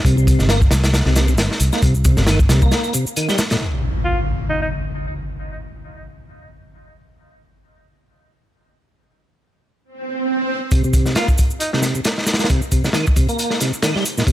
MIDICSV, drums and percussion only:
0, 0, Header, 1, 2, 480
1, 0, Start_track
1, 0, Key_signature, -3, "minor"
1, 0, Tempo, 444444
1, 55, Time_signature, 4, 2, 24, 8
1, 15466, End_track
2, 0, Start_track
2, 0, Title_t, "Drums"
2, 51, Note_on_c, 9, 36, 104
2, 60, Note_on_c, 9, 82, 41
2, 63, Note_on_c, 9, 42, 90
2, 159, Note_off_c, 9, 36, 0
2, 168, Note_off_c, 9, 82, 0
2, 171, Note_off_c, 9, 42, 0
2, 193, Note_on_c, 9, 82, 28
2, 294, Note_on_c, 9, 36, 89
2, 297, Note_on_c, 9, 42, 73
2, 298, Note_off_c, 9, 82, 0
2, 298, Note_on_c, 9, 82, 72
2, 402, Note_off_c, 9, 36, 0
2, 405, Note_off_c, 9, 42, 0
2, 406, Note_off_c, 9, 82, 0
2, 420, Note_on_c, 9, 38, 39
2, 430, Note_on_c, 9, 82, 32
2, 527, Note_off_c, 9, 38, 0
2, 527, Note_on_c, 9, 38, 117
2, 532, Note_on_c, 9, 42, 83
2, 533, Note_off_c, 9, 82, 0
2, 533, Note_on_c, 9, 82, 39
2, 635, Note_off_c, 9, 38, 0
2, 640, Note_off_c, 9, 42, 0
2, 641, Note_off_c, 9, 82, 0
2, 664, Note_on_c, 9, 36, 83
2, 667, Note_on_c, 9, 82, 28
2, 764, Note_on_c, 9, 38, 106
2, 768, Note_on_c, 9, 42, 88
2, 772, Note_off_c, 9, 36, 0
2, 774, Note_off_c, 9, 82, 0
2, 774, Note_on_c, 9, 82, 73
2, 872, Note_off_c, 9, 38, 0
2, 876, Note_off_c, 9, 42, 0
2, 882, Note_off_c, 9, 82, 0
2, 903, Note_on_c, 9, 42, 81
2, 905, Note_on_c, 9, 38, 92
2, 908, Note_on_c, 9, 82, 34
2, 1011, Note_off_c, 9, 38, 0
2, 1011, Note_off_c, 9, 42, 0
2, 1011, Note_on_c, 9, 38, 105
2, 1015, Note_off_c, 9, 82, 0
2, 1015, Note_on_c, 9, 82, 41
2, 1018, Note_on_c, 9, 42, 74
2, 1119, Note_off_c, 9, 38, 0
2, 1123, Note_off_c, 9, 82, 0
2, 1126, Note_off_c, 9, 42, 0
2, 1142, Note_on_c, 9, 38, 47
2, 1247, Note_on_c, 9, 42, 77
2, 1250, Note_off_c, 9, 38, 0
2, 1252, Note_on_c, 9, 82, 70
2, 1256, Note_on_c, 9, 38, 101
2, 1355, Note_off_c, 9, 42, 0
2, 1360, Note_off_c, 9, 82, 0
2, 1364, Note_off_c, 9, 38, 0
2, 1383, Note_on_c, 9, 82, 31
2, 1487, Note_off_c, 9, 82, 0
2, 1487, Note_on_c, 9, 82, 41
2, 1493, Note_on_c, 9, 38, 125
2, 1497, Note_on_c, 9, 42, 94
2, 1595, Note_off_c, 9, 82, 0
2, 1601, Note_off_c, 9, 38, 0
2, 1605, Note_off_c, 9, 42, 0
2, 1633, Note_on_c, 9, 38, 60
2, 1723, Note_on_c, 9, 42, 66
2, 1732, Note_on_c, 9, 82, 76
2, 1741, Note_off_c, 9, 38, 0
2, 1831, Note_off_c, 9, 42, 0
2, 1840, Note_off_c, 9, 82, 0
2, 1864, Note_on_c, 9, 82, 33
2, 1868, Note_on_c, 9, 38, 45
2, 1969, Note_off_c, 9, 82, 0
2, 1969, Note_on_c, 9, 82, 43
2, 1972, Note_on_c, 9, 36, 116
2, 1976, Note_off_c, 9, 38, 0
2, 1978, Note_on_c, 9, 42, 95
2, 2077, Note_off_c, 9, 82, 0
2, 2080, Note_off_c, 9, 36, 0
2, 2086, Note_off_c, 9, 42, 0
2, 2101, Note_on_c, 9, 82, 31
2, 2207, Note_on_c, 9, 42, 67
2, 2209, Note_off_c, 9, 82, 0
2, 2210, Note_on_c, 9, 82, 75
2, 2215, Note_on_c, 9, 36, 102
2, 2315, Note_off_c, 9, 42, 0
2, 2318, Note_off_c, 9, 82, 0
2, 2323, Note_off_c, 9, 36, 0
2, 2344, Note_on_c, 9, 38, 55
2, 2344, Note_on_c, 9, 82, 32
2, 2447, Note_off_c, 9, 38, 0
2, 2447, Note_on_c, 9, 38, 111
2, 2452, Note_off_c, 9, 82, 0
2, 2452, Note_on_c, 9, 82, 42
2, 2459, Note_on_c, 9, 42, 83
2, 2555, Note_off_c, 9, 38, 0
2, 2560, Note_off_c, 9, 82, 0
2, 2567, Note_off_c, 9, 42, 0
2, 2585, Note_on_c, 9, 36, 86
2, 2588, Note_on_c, 9, 82, 31
2, 2691, Note_on_c, 9, 38, 100
2, 2692, Note_on_c, 9, 42, 89
2, 2693, Note_off_c, 9, 36, 0
2, 2695, Note_off_c, 9, 82, 0
2, 2695, Note_on_c, 9, 82, 72
2, 2799, Note_off_c, 9, 38, 0
2, 2800, Note_off_c, 9, 42, 0
2, 2803, Note_off_c, 9, 82, 0
2, 2828, Note_on_c, 9, 82, 35
2, 2830, Note_on_c, 9, 36, 90
2, 2933, Note_off_c, 9, 82, 0
2, 2933, Note_on_c, 9, 38, 97
2, 2933, Note_on_c, 9, 42, 76
2, 2933, Note_on_c, 9, 82, 44
2, 2938, Note_off_c, 9, 36, 0
2, 3041, Note_off_c, 9, 38, 0
2, 3041, Note_off_c, 9, 42, 0
2, 3041, Note_off_c, 9, 82, 0
2, 3066, Note_on_c, 9, 82, 29
2, 3167, Note_on_c, 9, 42, 60
2, 3174, Note_off_c, 9, 82, 0
2, 3176, Note_on_c, 9, 82, 73
2, 3275, Note_off_c, 9, 42, 0
2, 3284, Note_off_c, 9, 82, 0
2, 3312, Note_on_c, 9, 82, 34
2, 3417, Note_on_c, 9, 42, 83
2, 3419, Note_off_c, 9, 82, 0
2, 3419, Note_on_c, 9, 82, 45
2, 3525, Note_off_c, 9, 42, 0
2, 3527, Note_off_c, 9, 82, 0
2, 3549, Note_on_c, 9, 38, 44
2, 3553, Note_on_c, 9, 82, 29
2, 3650, Note_on_c, 9, 42, 77
2, 3655, Note_off_c, 9, 82, 0
2, 3655, Note_on_c, 9, 82, 78
2, 3657, Note_off_c, 9, 38, 0
2, 3658, Note_on_c, 9, 38, 113
2, 3758, Note_off_c, 9, 42, 0
2, 3763, Note_off_c, 9, 82, 0
2, 3766, Note_off_c, 9, 38, 0
2, 3782, Note_on_c, 9, 42, 72
2, 3791, Note_on_c, 9, 38, 98
2, 3792, Note_on_c, 9, 82, 34
2, 3890, Note_off_c, 9, 42, 0
2, 3899, Note_off_c, 9, 38, 0
2, 3900, Note_off_c, 9, 82, 0
2, 11571, Note_on_c, 9, 82, 40
2, 11574, Note_on_c, 9, 36, 103
2, 11576, Note_on_c, 9, 42, 84
2, 11679, Note_off_c, 9, 82, 0
2, 11682, Note_off_c, 9, 36, 0
2, 11684, Note_off_c, 9, 42, 0
2, 11705, Note_on_c, 9, 82, 30
2, 11810, Note_off_c, 9, 82, 0
2, 11810, Note_on_c, 9, 36, 100
2, 11810, Note_on_c, 9, 82, 75
2, 11816, Note_on_c, 9, 42, 62
2, 11918, Note_off_c, 9, 36, 0
2, 11918, Note_off_c, 9, 82, 0
2, 11924, Note_off_c, 9, 42, 0
2, 11941, Note_on_c, 9, 38, 38
2, 11944, Note_on_c, 9, 82, 34
2, 12044, Note_on_c, 9, 42, 77
2, 12049, Note_off_c, 9, 38, 0
2, 12050, Note_off_c, 9, 82, 0
2, 12050, Note_on_c, 9, 82, 42
2, 12053, Note_on_c, 9, 38, 113
2, 12152, Note_off_c, 9, 42, 0
2, 12158, Note_off_c, 9, 82, 0
2, 12161, Note_off_c, 9, 38, 0
2, 12186, Note_on_c, 9, 36, 85
2, 12186, Note_on_c, 9, 82, 31
2, 12289, Note_off_c, 9, 82, 0
2, 12289, Note_on_c, 9, 82, 74
2, 12294, Note_off_c, 9, 36, 0
2, 12294, Note_on_c, 9, 42, 68
2, 12302, Note_on_c, 9, 36, 87
2, 12397, Note_off_c, 9, 82, 0
2, 12402, Note_off_c, 9, 42, 0
2, 12410, Note_off_c, 9, 36, 0
2, 12424, Note_on_c, 9, 82, 33
2, 12530, Note_on_c, 9, 42, 88
2, 12532, Note_off_c, 9, 82, 0
2, 12532, Note_on_c, 9, 82, 44
2, 12638, Note_off_c, 9, 42, 0
2, 12640, Note_off_c, 9, 82, 0
2, 12671, Note_on_c, 9, 38, 53
2, 12767, Note_off_c, 9, 38, 0
2, 12767, Note_on_c, 9, 38, 56
2, 12772, Note_on_c, 9, 82, 75
2, 12775, Note_on_c, 9, 42, 69
2, 12875, Note_off_c, 9, 38, 0
2, 12880, Note_off_c, 9, 82, 0
2, 12883, Note_off_c, 9, 42, 0
2, 12904, Note_on_c, 9, 82, 32
2, 13009, Note_off_c, 9, 82, 0
2, 13009, Note_on_c, 9, 42, 91
2, 13009, Note_on_c, 9, 82, 45
2, 13018, Note_on_c, 9, 38, 127
2, 13117, Note_off_c, 9, 42, 0
2, 13117, Note_off_c, 9, 82, 0
2, 13126, Note_off_c, 9, 38, 0
2, 13154, Note_on_c, 9, 38, 55
2, 13246, Note_off_c, 9, 38, 0
2, 13246, Note_on_c, 9, 38, 85
2, 13248, Note_on_c, 9, 82, 78
2, 13256, Note_on_c, 9, 42, 71
2, 13324, Note_off_c, 9, 38, 0
2, 13324, Note_on_c, 9, 38, 91
2, 13325, Note_off_c, 9, 42, 0
2, 13325, Note_on_c, 9, 42, 62
2, 13356, Note_off_c, 9, 82, 0
2, 13382, Note_on_c, 9, 82, 32
2, 13385, Note_off_c, 9, 38, 0
2, 13385, Note_on_c, 9, 38, 84
2, 13392, Note_off_c, 9, 42, 0
2, 13392, Note_on_c, 9, 42, 67
2, 13437, Note_off_c, 9, 38, 0
2, 13437, Note_on_c, 9, 38, 94
2, 13445, Note_off_c, 9, 42, 0
2, 13445, Note_on_c, 9, 42, 66
2, 13490, Note_off_c, 9, 82, 0
2, 13494, Note_on_c, 9, 82, 42
2, 13497, Note_off_c, 9, 42, 0
2, 13497, Note_on_c, 9, 42, 86
2, 13499, Note_on_c, 9, 36, 102
2, 13545, Note_off_c, 9, 38, 0
2, 13602, Note_off_c, 9, 82, 0
2, 13605, Note_off_c, 9, 42, 0
2, 13607, Note_off_c, 9, 36, 0
2, 13628, Note_on_c, 9, 82, 30
2, 13733, Note_on_c, 9, 42, 67
2, 13734, Note_off_c, 9, 82, 0
2, 13734, Note_on_c, 9, 82, 74
2, 13737, Note_on_c, 9, 36, 87
2, 13841, Note_off_c, 9, 42, 0
2, 13842, Note_off_c, 9, 82, 0
2, 13845, Note_off_c, 9, 36, 0
2, 13870, Note_on_c, 9, 82, 33
2, 13873, Note_on_c, 9, 38, 53
2, 13965, Note_off_c, 9, 38, 0
2, 13965, Note_on_c, 9, 38, 110
2, 13976, Note_off_c, 9, 82, 0
2, 13976, Note_on_c, 9, 82, 43
2, 13977, Note_on_c, 9, 42, 76
2, 14073, Note_off_c, 9, 38, 0
2, 14084, Note_off_c, 9, 82, 0
2, 14085, Note_off_c, 9, 42, 0
2, 14111, Note_on_c, 9, 82, 29
2, 14121, Note_on_c, 9, 36, 91
2, 14213, Note_on_c, 9, 42, 72
2, 14218, Note_off_c, 9, 36, 0
2, 14218, Note_off_c, 9, 82, 0
2, 14218, Note_on_c, 9, 36, 98
2, 14218, Note_on_c, 9, 82, 76
2, 14321, Note_off_c, 9, 42, 0
2, 14326, Note_off_c, 9, 36, 0
2, 14326, Note_off_c, 9, 82, 0
2, 14348, Note_on_c, 9, 42, 39
2, 14352, Note_on_c, 9, 82, 34
2, 14456, Note_off_c, 9, 42, 0
2, 14459, Note_off_c, 9, 82, 0
2, 14459, Note_on_c, 9, 82, 44
2, 14461, Note_on_c, 9, 42, 81
2, 14567, Note_off_c, 9, 82, 0
2, 14569, Note_off_c, 9, 42, 0
2, 14584, Note_on_c, 9, 38, 43
2, 14692, Note_off_c, 9, 38, 0
2, 14692, Note_on_c, 9, 42, 68
2, 14698, Note_on_c, 9, 38, 38
2, 14698, Note_on_c, 9, 82, 76
2, 14800, Note_off_c, 9, 42, 0
2, 14806, Note_off_c, 9, 38, 0
2, 14806, Note_off_c, 9, 82, 0
2, 14832, Note_on_c, 9, 82, 34
2, 14930, Note_on_c, 9, 42, 87
2, 14932, Note_on_c, 9, 38, 119
2, 14938, Note_off_c, 9, 82, 0
2, 14938, Note_on_c, 9, 82, 44
2, 15038, Note_off_c, 9, 42, 0
2, 15040, Note_off_c, 9, 38, 0
2, 15046, Note_off_c, 9, 82, 0
2, 15075, Note_on_c, 9, 38, 40
2, 15177, Note_on_c, 9, 82, 80
2, 15180, Note_on_c, 9, 42, 60
2, 15183, Note_off_c, 9, 38, 0
2, 15285, Note_off_c, 9, 82, 0
2, 15288, Note_off_c, 9, 42, 0
2, 15311, Note_on_c, 9, 82, 35
2, 15320, Note_on_c, 9, 38, 45
2, 15410, Note_on_c, 9, 36, 110
2, 15411, Note_on_c, 9, 42, 79
2, 15419, Note_off_c, 9, 82, 0
2, 15419, Note_on_c, 9, 82, 43
2, 15428, Note_off_c, 9, 38, 0
2, 15466, Note_off_c, 9, 36, 0
2, 15466, Note_off_c, 9, 42, 0
2, 15466, Note_off_c, 9, 82, 0
2, 15466, End_track
0, 0, End_of_file